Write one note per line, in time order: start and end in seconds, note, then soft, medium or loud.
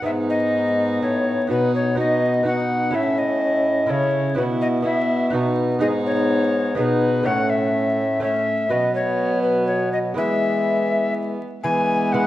0.02 0.98 G#2 soft
0.02 1.04 G#2 medium
0.02 1.45 B3 soft
0.02 1.46 B3 medium
0.02 1.45 D#4 soft
0.02 1.46 D#4 medium
0.02 1.46 G#4 soft
0.02 0.11 E5 medium
0.30 1.01 D#5 medium
1.02 1.46 A2 soft
1.02 1.50 A2 medium
1.02 1.49 C#5 medium
1.47 2.92 B2 medium
1.47 2.91 B2 soft
1.47 1.94 B3 soft
1.47 1.97 B3 medium
1.47 1.95 D#4 soft
1.47 1.97 D#4 medium
1.47 1.96 F#4 soft
1.47 1.74 B4 medium
1.76 1.98 C#5 medium
1.95 2.42 B3 soft
1.95 2.46 B3 medium
1.95 2.43 D#4 soft
1.95 2.45 D#4 medium
1.95 2.44 F#4 soft
1.99 2.46 D#5 medium
2.43 2.91 B3 soft
2.43 2.96 B3 soft
2.43 2.90 D#4 soft
2.43 2.95 D#4 medium
2.43 2.92 F#4 soft
2.43 2.97 F#5 medium
2.91 3.86 A2 soft
2.91 3.85 C#4 soft
2.91 3.86 E4 soft
2.91 3.89 E4 medium
2.91 3.87 A4 soft
2.95 3.92 A2 medium
2.95 3.89 C#4 medium
2.95 3.20 E5 medium
3.18 3.92 D#5 medium
3.86 4.34 C#3 medium
3.86 4.35 C#4 soft
3.86 4.39 C#4 medium
3.86 4.34 E4 soft
3.86 4.37 E4 medium
3.86 4.36 A4 soft
3.86 4.37 C#5 medium
3.91 4.40 C#3 medium
4.35 5.33 B2 medium
4.35 5.30 B2 medium
4.35 4.81 B3 soft
4.35 4.85 B3 medium
4.35 4.83 E4 soft
4.35 4.85 E4 medium
4.35 4.84 F#4 soft
4.35 4.43 B4 medium
4.61 4.67 D#5 medium
4.82 5.29 B3 soft
4.82 5.33 B3 medium
4.82 5.31 E4 soft
4.82 5.33 E4 medium
4.82 5.32 F#4 soft
4.82 5.33 E5 medium
5.30 5.81 B2 medium
5.30 5.78 B3 soft
5.30 5.81 B3 medium
5.30 5.79 D#4 soft
5.30 5.81 D#4 medium
5.30 5.80 F#4 soft
5.34 5.78 B2 medium
5.79 6.80 G#2 medium
5.79 6.74 G#2 medium
5.79 6.74 B3 soft
5.79 6.74 B3 medium
5.79 6.74 D#4 soft
5.79 6.74 D#4 medium
5.79 6.75 G#4 soft
5.79 5.87 D#5 medium
6.06 6.77 C#5 medium
6.75 7.28 B2 medium
6.75 7.23 B2 medium
6.75 7.23 B3 soft
6.75 7.28 B3 medium
6.75 7.24 D#4 soft
6.75 7.26 D#4 medium
6.75 7.25 G#4 medium
6.75 7.27 B4 medium
7.23 8.54 A2 medium
7.23 8.18 A3 soft
7.23 8.06 A3 medium
7.23 8.19 C#4 soft
7.23 8.21 C#4 medium
7.23 8.20 C#5 soft
7.23 7.51 F#5 loud
7.27 8.68 A2 medium
7.50 8.23 E5 medium
8.20 8.68 A3 soft
8.20 8.70 A3 medium
8.20 8.69 C#4 soft
8.20 8.70 C#4 medium
8.20 8.70 C#5 soft
8.20 8.72 E5 medium
8.69 10.13 B2 medium
8.69 10.14 F#3 medium
8.69 10.14 B3 medium
8.69 10.12 F#4 soft
8.69 10.13 B4 soft
8.69 8.94 D#5 medium
8.95 9.42 C#5 medium
9.42 9.66 B4 medium
9.67 9.92 C#5 medium
9.93 9.99 D#5 medium
10.14 11.38 E3 medium
10.14 11.36 E3 soft
10.14 11.59 G#3 soft
10.14 11.38 G#3 medium
10.14 11.42 B3 medium
10.14 11.60 E4 soft
10.14 11.60 B4 soft
10.14 11.14 E5 medium
11.64 12.27 E3 medium
11.64 12.27 G#3 medium
11.64 12.27 B3 medium
11.64 12.14 G#5 loud
12.12 12.27 G#3 medium
12.12 12.27 E4 medium
12.12 12.27 B4 medium
12.12 12.27 F#5 medium